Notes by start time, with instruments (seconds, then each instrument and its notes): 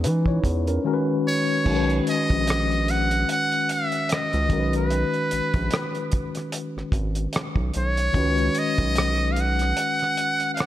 Already playing: tine electric piano G#3 C#4 F#4 B4
0.04 analog synth bass E3, tine electric piano D#4 B4, closed hi-hat
0.26 tine electric piano E4 C#5, kick
0.44 analog synth bass E2, kick, closed hi-hat
0.67 tine electric piano C#4 A#4, closed hi-hat
0.84 tine electric piano D#3 G#3 C#4 F#4 A#4
0.94 tine electric piano B4
1.27 muted trumpet C#5
1.64 analog synth bass B1, tine electric piano D#3 G#3 C#4, kick, crash
1.68 tine electric piano F#4 A#4
1.76 tine electric piano B4
1.90 closed hi-hat
2.07 muted trumpet D#5, closed hi-hat
2.30 analog synth bass A#1, kick, closed hi-hat
2.47 cross-stick, closed hi-hat
2.71 closed hi-hat
2.88 muted trumpet F#5, closed hi-hat
3.11 closed hi-hat
3.29 muted trumpet F#5, closed hi-hat
3.52 closed hi-hat
3.69 muted trumpet E5, closed hi-hat
3.92 closed hi-hat
4.09 muted trumpet D#5, cross-stick, closed hi-hat
4.33 analog synth bass C#2, closed hi-hat
4.48 analog synth bass B1, tine electric piano D#3 G#3 C#4, kick, closed hi-hat
4.52 tine electric piano F#4 A#4
4.60 tine electric piano B4
4.73 muted trumpet B4, closed hi-hat
4.90 closed hi-hat
5.14 closed hi-hat
5.31 analog synth bass A#1, closed hi-hat
5.54 analog synth bass A#1, kick, closed hi-hat
5.71 cross-stick, closed hi-hat
5.95 closed hi-hat
6.12 kick, closed hi-hat
6.35 cross-stick, closed hi-hat
6.52 closed hi-hat
6.77 analog synth bass G#1, cross-stick
6.92 analog synth bass G#1, kick, closed hi-hat
7.15 closed hi-hat
7.33 cross-stick, closed hi-hat
7.56 analog synth bass B1, kick
7.74 analog synth bass B1, closed hi-hat
7.78 muted trumpet C#5
7.97 closed hi-hat
8.12 analog synth bass C#2, tine electric piano D#3 G#3 C#4, kick, closed hi-hat
8.16 tine electric piano F#4 B4
8.38 closed hi-hat
8.55 closed hi-hat
8.59 muted trumpet D#5
8.78 analog synth bass B1, kick, closed hi-hat
8.95 cross-stick, closed hi-hat
9.32 muted trumpet F5
9.36 closed hi-hat
9.41 muted trumpet F#5
9.59 cross-stick, closed hi-hat
9.77 closed hi-hat
9.99 cross-stick, closed hi-hat
10.17 closed hi-hat
10.40 closed hi-hat
10.54 muted trumpet F5, closed hi-hat
10.60 muted trumpet F#5, cross-stick